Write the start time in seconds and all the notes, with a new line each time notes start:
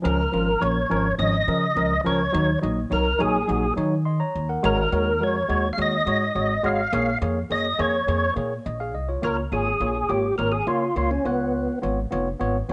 0.02 C#2 F3 C#4 A#4
0.32 G#1 F3 C#4 F4
0.60 A#1 F3 C#4 A#4 C#5
0.90 G#1 F3 C#4 A#4
1.19 G#1 F3 C#4 C#5 D#5
1.48 C#3 F3 C#4 A#4
1.75 C#2 F3 C#4 A#4
2.04 C#2 F3 C#4 A#4 C#5
2.32 D#2 F#3 D#4 C#5
2.62 A#1 F#3 D#4 D#5
2.90 C2 F#3 D#4 A#4 C#5
3.19 A#1 F#3 D#4 G#4 C#5
3.48 A#1 F#3 D#4 F#4
3.76 D#3 F#3 D#4 C#5
4.05 D#5 C6
4.20 C#5 A#5
4.36 D#2
4.49 A#4 F#5
4.63 G#1 G#3 F#4 A#4 C#5
4.92 D#2 G#3 F#4 C#5
5.20 F2 G#3 F#4 A#4 C#5
5.49 D#2 G#3 F#4 C#5
5.73 F5
5.78 D#2 G#3 F#4 C#5
5.82 D#5
6.06 G#2 G#3 F#4 C#5
6.35 G#1 G#3 F#4 C#5
6.64 G#1 G#3 F#4 C#5 F5
6.93 A#1 A#3 G#4 C#5
7.21 F2 A#3 G#4 C#5
7.50 F#2 A#3 G#4 C#5 D#5
7.79 F2 A#3 G#4 C#5
8.07 F2 A#3 G#4 C#5
8.36 A#2 A#3 G#4 C#5
8.66 A#1 D#5
8.80 G#4 F5
8.94 C2 D#5
9.09 F4 C#5
9.22 C#2 A#3 F4 A#4 C#5
9.52 G#1 A#3 F4 G#4 C#5
9.80 A#1 A#3 F4 C#5
10.09 G#1 A#3 F4 G4 C#5
10.38 G#1 A#3 F4 A#4 C#5
10.52 G#4
10.67 C#3 A#3 F4 C#5
10.96 C#2 A#3 F4 C#5
11.11 C#4
11.24 C#2 B3 F4 C#5
11.82 G#1 B3 F4 C#5
12.11 F1 B3 F4 C#5
12.40 G#1 B3 F4 C#5
12.69 G#1 B3 F4